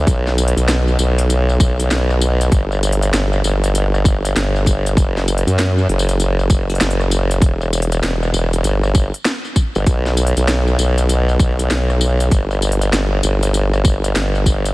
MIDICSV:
0, 0, Header, 1, 3, 480
1, 0, Start_track
1, 0, Tempo, 612245
1, 54, Time_signature, 4, 2, 24, 8
1, 11554, End_track
2, 0, Start_track
2, 0, Title_t, "Wobble bass"
2, 0, Program_c, 0, 39
2, 57, Note_on_c, 0, 35, 95
2, 423, Note_off_c, 0, 35, 0
2, 444, Note_on_c, 0, 35, 102
2, 759, Note_off_c, 0, 35, 0
2, 774, Note_on_c, 0, 35, 103
2, 1240, Note_off_c, 0, 35, 0
2, 1254, Note_on_c, 0, 35, 100
2, 1480, Note_off_c, 0, 35, 0
2, 1494, Note_on_c, 0, 35, 96
2, 1960, Note_off_c, 0, 35, 0
2, 1974, Note_on_c, 0, 31, 99
2, 2440, Note_off_c, 0, 31, 0
2, 2454, Note_on_c, 0, 31, 101
2, 2680, Note_off_c, 0, 31, 0
2, 2695, Note_on_c, 0, 31, 98
2, 3400, Note_off_c, 0, 31, 0
2, 3417, Note_on_c, 0, 31, 96
2, 3882, Note_off_c, 0, 31, 0
2, 3895, Note_on_c, 0, 30, 98
2, 4262, Note_off_c, 0, 30, 0
2, 4287, Note_on_c, 0, 42, 102
2, 4601, Note_off_c, 0, 42, 0
2, 4615, Note_on_c, 0, 30, 105
2, 5080, Note_off_c, 0, 30, 0
2, 5096, Note_on_c, 0, 30, 98
2, 5321, Note_off_c, 0, 30, 0
2, 5339, Note_on_c, 0, 30, 101
2, 5802, Note_off_c, 0, 30, 0
2, 5814, Note_on_c, 0, 28, 100
2, 6280, Note_off_c, 0, 28, 0
2, 6296, Note_on_c, 0, 28, 96
2, 6521, Note_off_c, 0, 28, 0
2, 6533, Note_on_c, 0, 28, 97
2, 6760, Note_off_c, 0, 28, 0
2, 6775, Note_on_c, 0, 31, 99
2, 7142, Note_off_c, 0, 31, 0
2, 7651, Note_on_c, 0, 31, 98
2, 7723, Note_off_c, 0, 31, 0
2, 7736, Note_on_c, 0, 35, 98
2, 8103, Note_off_c, 0, 35, 0
2, 8128, Note_on_c, 0, 35, 98
2, 8441, Note_off_c, 0, 35, 0
2, 8455, Note_on_c, 0, 35, 97
2, 8920, Note_off_c, 0, 35, 0
2, 8935, Note_on_c, 0, 35, 102
2, 9160, Note_off_c, 0, 35, 0
2, 9175, Note_on_c, 0, 35, 93
2, 9641, Note_off_c, 0, 35, 0
2, 9654, Note_on_c, 0, 31, 93
2, 10120, Note_off_c, 0, 31, 0
2, 10135, Note_on_c, 0, 31, 100
2, 10361, Note_off_c, 0, 31, 0
2, 10377, Note_on_c, 0, 31, 95
2, 11082, Note_off_c, 0, 31, 0
2, 11097, Note_on_c, 0, 31, 98
2, 11554, Note_off_c, 0, 31, 0
2, 11554, End_track
3, 0, Start_track
3, 0, Title_t, "Drums"
3, 55, Note_on_c, 9, 36, 121
3, 61, Note_on_c, 9, 42, 69
3, 61, Note_on_c, 9, 54, 42
3, 133, Note_off_c, 9, 36, 0
3, 139, Note_off_c, 9, 42, 0
3, 139, Note_off_c, 9, 54, 0
3, 212, Note_on_c, 9, 38, 34
3, 212, Note_on_c, 9, 54, 21
3, 291, Note_off_c, 9, 38, 0
3, 291, Note_off_c, 9, 54, 0
3, 298, Note_on_c, 9, 42, 49
3, 298, Note_on_c, 9, 54, 76
3, 374, Note_off_c, 9, 42, 0
3, 374, Note_on_c, 9, 42, 68
3, 377, Note_off_c, 9, 54, 0
3, 451, Note_off_c, 9, 42, 0
3, 451, Note_on_c, 9, 42, 54
3, 451, Note_on_c, 9, 54, 30
3, 529, Note_off_c, 9, 42, 0
3, 529, Note_off_c, 9, 54, 0
3, 536, Note_on_c, 9, 38, 118
3, 536, Note_on_c, 9, 42, 66
3, 536, Note_on_c, 9, 54, 41
3, 614, Note_off_c, 9, 38, 0
3, 614, Note_off_c, 9, 42, 0
3, 614, Note_off_c, 9, 54, 0
3, 688, Note_on_c, 9, 54, 21
3, 766, Note_off_c, 9, 54, 0
3, 775, Note_on_c, 9, 42, 42
3, 775, Note_on_c, 9, 54, 79
3, 853, Note_off_c, 9, 42, 0
3, 853, Note_off_c, 9, 54, 0
3, 929, Note_on_c, 9, 42, 55
3, 929, Note_on_c, 9, 54, 30
3, 1007, Note_off_c, 9, 42, 0
3, 1007, Note_off_c, 9, 54, 0
3, 1019, Note_on_c, 9, 42, 68
3, 1019, Note_on_c, 9, 54, 42
3, 1097, Note_off_c, 9, 42, 0
3, 1097, Note_off_c, 9, 54, 0
3, 1170, Note_on_c, 9, 54, 22
3, 1248, Note_off_c, 9, 54, 0
3, 1254, Note_on_c, 9, 36, 103
3, 1258, Note_on_c, 9, 42, 39
3, 1258, Note_on_c, 9, 54, 74
3, 1332, Note_off_c, 9, 36, 0
3, 1336, Note_off_c, 9, 42, 0
3, 1336, Note_off_c, 9, 54, 0
3, 1408, Note_on_c, 9, 42, 53
3, 1408, Note_on_c, 9, 54, 31
3, 1487, Note_off_c, 9, 42, 0
3, 1487, Note_off_c, 9, 54, 0
3, 1498, Note_on_c, 9, 38, 115
3, 1498, Note_on_c, 9, 42, 72
3, 1498, Note_on_c, 9, 54, 43
3, 1576, Note_off_c, 9, 38, 0
3, 1576, Note_off_c, 9, 42, 0
3, 1576, Note_off_c, 9, 54, 0
3, 1649, Note_on_c, 9, 37, 56
3, 1649, Note_on_c, 9, 54, 20
3, 1728, Note_off_c, 9, 37, 0
3, 1728, Note_off_c, 9, 54, 0
3, 1737, Note_on_c, 9, 42, 38
3, 1737, Note_on_c, 9, 54, 77
3, 1815, Note_off_c, 9, 42, 0
3, 1815, Note_off_c, 9, 54, 0
3, 1889, Note_on_c, 9, 42, 53
3, 1889, Note_on_c, 9, 54, 31
3, 1968, Note_off_c, 9, 42, 0
3, 1968, Note_off_c, 9, 54, 0
3, 1974, Note_on_c, 9, 36, 127
3, 1977, Note_on_c, 9, 42, 69
3, 1977, Note_on_c, 9, 54, 40
3, 2052, Note_off_c, 9, 36, 0
3, 2055, Note_off_c, 9, 42, 0
3, 2055, Note_off_c, 9, 54, 0
3, 2130, Note_on_c, 9, 54, 19
3, 2208, Note_off_c, 9, 54, 0
3, 2218, Note_on_c, 9, 42, 51
3, 2218, Note_on_c, 9, 54, 72
3, 2293, Note_off_c, 9, 42, 0
3, 2293, Note_on_c, 9, 42, 71
3, 2297, Note_off_c, 9, 54, 0
3, 2372, Note_off_c, 9, 42, 0
3, 2372, Note_on_c, 9, 42, 53
3, 2372, Note_on_c, 9, 54, 29
3, 2450, Note_off_c, 9, 42, 0
3, 2450, Note_off_c, 9, 54, 0
3, 2458, Note_on_c, 9, 38, 122
3, 2458, Note_on_c, 9, 42, 65
3, 2458, Note_on_c, 9, 54, 39
3, 2537, Note_off_c, 9, 38, 0
3, 2537, Note_off_c, 9, 42, 0
3, 2537, Note_off_c, 9, 54, 0
3, 2609, Note_on_c, 9, 54, 20
3, 2688, Note_off_c, 9, 54, 0
3, 2699, Note_on_c, 9, 42, 41
3, 2699, Note_on_c, 9, 54, 77
3, 2777, Note_off_c, 9, 42, 0
3, 2777, Note_off_c, 9, 54, 0
3, 2852, Note_on_c, 9, 42, 52
3, 2852, Note_on_c, 9, 54, 31
3, 2930, Note_off_c, 9, 42, 0
3, 2930, Note_off_c, 9, 54, 0
3, 2940, Note_on_c, 9, 42, 73
3, 2940, Note_on_c, 9, 54, 42
3, 3018, Note_off_c, 9, 42, 0
3, 3018, Note_off_c, 9, 54, 0
3, 3092, Note_on_c, 9, 37, 37
3, 3092, Note_on_c, 9, 54, 20
3, 3170, Note_off_c, 9, 37, 0
3, 3170, Note_off_c, 9, 54, 0
3, 3176, Note_on_c, 9, 36, 106
3, 3180, Note_on_c, 9, 42, 40
3, 3180, Note_on_c, 9, 54, 71
3, 3254, Note_off_c, 9, 36, 0
3, 3259, Note_off_c, 9, 42, 0
3, 3259, Note_off_c, 9, 54, 0
3, 3333, Note_on_c, 9, 42, 54
3, 3333, Note_on_c, 9, 54, 29
3, 3412, Note_off_c, 9, 42, 0
3, 3412, Note_off_c, 9, 54, 0
3, 3421, Note_on_c, 9, 38, 124
3, 3421, Note_on_c, 9, 42, 70
3, 3421, Note_on_c, 9, 54, 41
3, 3499, Note_off_c, 9, 38, 0
3, 3499, Note_off_c, 9, 42, 0
3, 3499, Note_off_c, 9, 54, 0
3, 3574, Note_on_c, 9, 54, 20
3, 3653, Note_off_c, 9, 54, 0
3, 3655, Note_on_c, 9, 36, 66
3, 3661, Note_on_c, 9, 42, 40
3, 3661, Note_on_c, 9, 54, 69
3, 3734, Note_off_c, 9, 36, 0
3, 3739, Note_off_c, 9, 42, 0
3, 3739, Note_off_c, 9, 54, 0
3, 3813, Note_on_c, 9, 42, 54
3, 3813, Note_on_c, 9, 54, 31
3, 3892, Note_off_c, 9, 42, 0
3, 3892, Note_off_c, 9, 54, 0
3, 3895, Note_on_c, 9, 36, 127
3, 3903, Note_on_c, 9, 42, 70
3, 3903, Note_on_c, 9, 54, 41
3, 3974, Note_off_c, 9, 36, 0
3, 3981, Note_off_c, 9, 42, 0
3, 3981, Note_off_c, 9, 54, 0
3, 4053, Note_on_c, 9, 38, 37
3, 4053, Note_on_c, 9, 54, 20
3, 4131, Note_off_c, 9, 38, 0
3, 4131, Note_off_c, 9, 54, 0
3, 4139, Note_on_c, 9, 42, 54
3, 4139, Note_on_c, 9, 54, 71
3, 4216, Note_off_c, 9, 42, 0
3, 4216, Note_on_c, 9, 42, 64
3, 4217, Note_off_c, 9, 54, 0
3, 4293, Note_off_c, 9, 42, 0
3, 4293, Note_on_c, 9, 42, 51
3, 4293, Note_on_c, 9, 54, 30
3, 4371, Note_off_c, 9, 42, 0
3, 4371, Note_off_c, 9, 54, 0
3, 4381, Note_on_c, 9, 38, 127
3, 4381, Note_on_c, 9, 42, 70
3, 4381, Note_on_c, 9, 54, 39
3, 4459, Note_off_c, 9, 38, 0
3, 4459, Note_off_c, 9, 42, 0
3, 4459, Note_off_c, 9, 54, 0
3, 4534, Note_on_c, 9, 54, 20
3, 4612, Note_off_c, 9, 54, 0
3, 4621, Note_on_c, 9, 42, 42
3, 4698, Note_on_c, 9, 54, 76
3, 4699, Note_off_c, 9, 42, 0
3, 4773, Note_off_c, 9, 54, 0
3, 4773, Note_on_c, 9, 42, 52
3, 4773, Note_on_c, 9, 54, 30
3, 4851, Note_off_c, 9, 42, 0
3, 4851, Note_off_c, 9, 54, 0
3, 4859, Note_on_c, 9, 42, 73
3, 4859, Note_on_c, 9, 54, 42
3, 4937, Note_off_c, 9, 42, 0
3, 4937, Note_off_c, 9, 54, 0
3, 5011, Note_on_c, 9, 54, 20
3, 5090, Note_off_c, 9, 54, 0
3, 5094, Note_on_c, 9, 36, 105
3, 5098, Note_on_c, 9, 42, 41
3, 5098, Note_on_c, 9, 54, 75
3, 5173, Note_off_c, 9, 36, 0
3, 5176, Note_off_c, 9, 42, 0
3, 5176, Note_off_c, 9, 54, 0
3, 5250, Note_on_c, 9, 42, 24
3, 5250, Note_on_c, 9, 54, 32
3, 5293, Note_off_c, 9, 42, 0
3, 5293, Note_on_c, 9, 42, 32
3, 5329, Note_off_c, 9, 54, 0
3, 5336, Note_off_c, 9, 42, 0
3, 5336, Note_on_c, 9, 38, 125
3, 5336, Note_on_c, 9, 42, 70
3, 5336, Note_on_c, 9, 54, 41
3, 5414, Note_off_c, 9, 42, 0
3, 5414, Note_on_c, 9, 42, 47
3, 5415, Note_off_c, 9, 38, 0
3, 5415, Note_off_c, 9, 54, 0
3, 5491, Note_on_c, 9, 37, 54
3, 5491, Note_on_c, 9, 54, 19
3, 5492, Note_off_c, 9, 42, 0
3, 5569, Note_off_c, 9, 37, 0
3, 5569, Note_off_c, 9, 54, 0
3, 5577, Note_on_c, 9, 42, 40
3, 5577, Note_on_c, 9, 54, 70
3, 5655, Note_off_c, 9, 42, 0
3, 5655, Note_off_c, 9, 54, 0
3, 5730, Note_on_c, 9, 42, 55
3, 5730, Note_on_c, 9, 54, 28
3, 5809, Note_off_c, 9, 42, 0
3, 5809, Note_off_c, 9, 54, 0
3, 5814, Note_on_c, 9, 36, 122
3, 5817, Note_on_c, 9, 42, 69
3, 5817, Note_on_c, 9, 54, 42
3, 5893, Note_off_c, 9, 36, 0
3, 5896, Note_off_c, 9, 42, 0
3, 5896, Note_off_c, 9, 54, 0
3, 5970, Note_on_c, 9, 54, 21
3, 6048, Note_off_c, 9, 54, 0
3, 6060, Note_on_c, 9, 42, 50
3, 6060, Note_on_c, 9, 54, 76
3, 6131, Note_off_c, 9, 42, 0
3, 6131, Note_on_c, 9, 42, 61
3, 6138, Note_off_c, 9, 54, 0
3, 6209, Note_off_c, 9, 42, 0
3, 6209, Note_on_c, 9, 42, 50
3, 6209, Note_on_c, 9, 54, 29
3, 6287, Note_off_c, 9, 42, 0
3, 6287, Note_off_c, 9, 54, 0
3, 6298, Note_on_c, 9, 38, 122
3, 6298, Note_on_c, 9, 42, 62
3, 6298, Note_on_c, 9, 54, 40
3, 6377, Note_off_c, 9, 38, 0
3, 6377, Note_off_c, 9, 42, 0
3, 6377, Note_off_c, 9, 54, 0
3, 6451, Note_on_c, 9, 54, 21
3, 6529, Note_off_c, 9, 54, 0
3, 6537, Note_on_c, 9, 54, 72
3, 6616, Note_off_c, 9, 54, 0
3, 6690, Note_on_c, 9, 42, 53
3, 6690, Note_on_c, 9, 54, 29
3, 6768, Note_off_c, 9, 42, 0
3, 6768, Note_off_c, 9, 54, 0
3, 6775, Note_on_c, 9, 42, 68
3, 6775, Note_on_c, 9, 54, 43
3, 6854, Note_off_c, 9, 42, 0
3, 6854, Note_off_c, 9, 54, 0
3, 6925, Note_on_c, 9, 37, 36
3, 6925, Note_on_c, 9, 54, 21
3, 7003, Note_off_c, 9, 37, 0
3, 7003, Note_off_c, 9, 54, 0
3, 7014, Note_on_c, 9, 36, 109
3, 7016, Note_on_c, 9, 42, 37
3, 7016, Note_on_c, 9, 54, 74
3, 7093, Note_off_c, 9, 36, 0
3, 7094, Note_off_c, 9, 42, 0
3, 7094, Note_off_c, 9, 54, 0
3, 7167, Note_on_c, 9, 42, 51
3, 7246, Note_off_c, 9, 42, 0
3, 7253, Note_on_c, 9, 38, 123
3, 7253, Note_on_c, 9, 42, 65
3, 7253, Note_on_c, 9, 54, 40
3, 7332, Note_off_c, 9, 38, 0
3, 7332, Note_off_c, 9, 42, 0
3, 7332, Note_off_c, 9, 54, 0
3, 7406, Note_on_c, 9, 54, 21
3, 7484, Note_off_c, 9, 54, 0
3, 7494, Note_on_c, 9, 36, 69
3, 7495, Note_on_c, 9, 42, 39
3, 7495, Note_on_c, 9, 54, 69
3, 7572, Note_off_c, 9, 36, 0
3, 7573, Note_off_c, 9, 42, 0
3, 7573, Note_off_c, 9, 54, 0
3, 7646, Note_on_c, 9, 54, 30
3, 7724, Note_off_c, 9, 54, 0
3, 7734, Note_on_c, 9, 36, 122
3, 7736, Note_on_c, 9, 42, 61
3, 7736, Note_on_c, 9, 54, 44
3, 7812, Note_off_c, 9, 36, 0
3, 7814, Note_off_c, 9, 42, 0
3, 7814, Note_off_c, 9, 54, 0
3, 7887, Note_on_c, 9, 38, 36
3, 7887, Note_on_c, 9, 54, 20
3, 7966, Note_off_c, 9, 38, 0
3, 7966, Note_off_c, 9, 54, 0
3, 7974, Note_on_c, 9, 42, 47
3, 7974, Note_on_c, 9, 54, 75
3, 8049, Note_off_c, 9, 42, 0
3, 8049, Note_on_c, 9, 42, 62
3, 8052, Note_off_c, 9, 54, 0
3, 8128, Note_off_c, 9, 42, 0
3, 8129, Note_on_c, 9, 42, 50
3, 8129, Note_on_c, 9, 54, 33
3, 8207, Note_off_c, 9, 42, 0
3, 8207, Note_off_c, 9, 54, 0
3, 8217, Note_on_c, 9, 38, 118
3, 8217, Note_on_c, 9, 42, 62
3, 8217, Note_on_c, 9, 54, 41
3, 8295, Note_off_c, 9, 38, 0
3, 8295, Note_off_c, 9, 42, 0
3, 8295, Note_off_c, 9, 54, 0
3, 8369, Note_on_c, 9, 54, 21
3, 8448, Note_off_c, 9, 54, 0
3, 8458, Note_on_c, 9, 42, 36
3, 8458, Note_on_c, 9, 54, 78
3, 8536, Note_off_c, 9, 42, 0
3, 8536, Note_off_c, 9, 54, 0
3, 8608, Note_on_c, 9, 42, 50
3, 8608, Note_on_c, 9, 54, 33
3, 8686, Note_off_c, 9, 42, 0
3, 8686, Note_off_c, 9, 54, 0
3, 8697, Note_on_c, 9, 42, 67
3, 8697, Note_on_c, 9, 54, 45
3, 8776, Note_off_c, 9, 42, 0
3, 8776, Note_off_c, 9, 54, 0
3, 8849, Note_on_c, 9, 54, 22
3, 8927, Note_off_c, 9, 54, 0
3, 8934, Note_on_c, 9, 36, 111
3, 8938, Note_on_c, 9, 42, 36
3, 8938, Note_on_c, 9, 54, 78
3, 9012, Note_off_c, 9, 36, 0
3, 9016, Note_off_c, 9, 42, 0
3, 9016, Note_off_c, 9, 54, 0
3, 9089, Note_on_c, 9, 42, 50
3, 9089, Note_on_c, 9, 54, 32
3, 9168, Note_off_c, 9, 42, 0
3, 9168, Note_off_c, 9, 54, 0
3, 9178, Note_on_c, 9, 38, 122
3, 9178, Note_on_c, 9, 42, 62
3, 9178, Note_on_c, 9, 54, 42
3, 9256, Note_off_c, 9, 38, 0
3, 9256, Note_off_c, 9, 42, 0
3, 9256, Note_off_c, 9, 54, 0
3, 9328, Note_on_c, 9, 37, 48
3, 9328, Note_on_c, 9, 54, 20
3, 9407, Note_off_c, 9, 37, 0
3, 9407, Note_off_c, 9, 54, 0
3, 9415, Note_on_c, 9, 54, 78
3, 9493, Note_off_c, 9, 54, 0
3, 9567, Note_on_c, 9, 42, 50
3, 9567, Note_on_c, 9, 54, 33
3, 9645, Note_off_c, 9, 42, 0
3, 9645, Note_off_c, 9, 54, 0
3, 9654, Note_on_c, 9, 36, 115
3, 9656, Note_on_c, 9, 42, 64
3, 9656, Note_on_c, 9, 54, 46
3, 9733, Note_off_c, 9, 36, 0
3, 9735, Note_off_c, 9, 42, 0
3, 9735, Note_off_c, 9, 54, 0
3, 9806, Note_on_c, 9, 54, 21
3, 9885, Note_off_c, 9, 54, 0
3, 9895, Note_on_c, 9, 42, 47
3, 9895, Note_on_c, 9, 54, 76
3, 9972, Note_off_c, 9, 42, 0
3, 9972, Note_on_c, 9, 42, 61
3, 9973, Note_off_c, 9, 54, 0
3, 10048, Note_off_c, 9, 42, 0
3, 10048, Note_on_c, 9, 42, 47
3, 10048, Note_on_c, 9, 54, 33
3, 10126, Note_off_c, 9, 42, 0
3, 10126, Note_off_c, 9, 54, 0
3, 10137, Note_on_c, 9, 38, 110
3, 10137, Note_on_c, 9, 42, 63
3, 10137, Note_on_c, 9, 54, 44
3, 10215, Note_off_c, 9, 38, 0
3, 10215, Note_off_c, 9, 42, 0
3, 10215, Note_off_c, 9, 54, 0
3, 10374, Note_on_c, 9, 42, 37
3, 10374, Note_on_c, 9, 54, 84
3, 10453, Note_off_c, 9, 42, 0
3, 10453, Note_off_c, 9, 54, 0
3, 10527, Note_on_c, 9, 42, 51
3, 10527, Note_on_c, 9, 54, 33
3, 10605, Note_off_c, 9, 42, 0
3, 10605, Note_off_c, 9, 54, 0
3, 10616, Note_on_c, 9, 42, 65
3, 10616, Note_on_c, 9, 54, 45
3, 10695, Note_off_c, 9, 42, 0
3, 10695, Note_off_c, 9, 54, 0
3, 10767, Note_on_c, 9, 37, 37
3, 10767, Note_on_c, 9, 54, 23
3, 10846, Note_off_c, 9, 37, 0
3, 10846, Note_off_c, 9, 54, 0
3, 10855, Note_on_c, 9, 36, 102
3, 10857, Note_on_c, 9, 42, 37
3, 10857, Note_on_c, 9, 54, 79
3, 10934, Note_off_c, 9, 36, 0
3, 10935, Note_off_c, 9, 42, 0
3, 10935, Note_off_c, 9, 54, 0
3, 11010, Note_on_c, 9, 42, 52
3, 11010, Note_on_c, 9, 54, 33
3, 11088, Note_off_c, 9, 42, 0
3, 11088, Note_off_c, 9, 54, 0
3, 11098, Note_on_c, 9, 38, 116
3, 11098, Note_on_c, 9, 42, 64
3, 11098, Note_on_c, 9, 54, 43
3, 11176, Note_off_c, 9, 38, 0
3, 11176, Note_off_c, 9, 42, 0
3, 11176, Note_off_c, 9, 54, 0
3, 11250, Note_on_c, 9, 54, 22
3, 11328, Note_off_c, 9, 54, 0
3, 11336, Note_on_c, 9, 36, 62
3, 11339, Note_on_c, 9, 42, 36
3, 11339, Note_on_c, 9, 54, 78
3, 11414, Note_off_c, 9, 36, 0
3, 11417, Note_off_c, 9, 42, 0
3, 11417, Note_off_c, 9, 54, 0
3, 11490, Note_on_c, 9, 42, 50
3, 11490, Note_on_c, 9, 54, 31
3, 11554, Note_off_c, 9, 42, 0
3, 11554, Note_off_c, 9, 54, 0
3, 11554, End_track
0, 0, End_of_file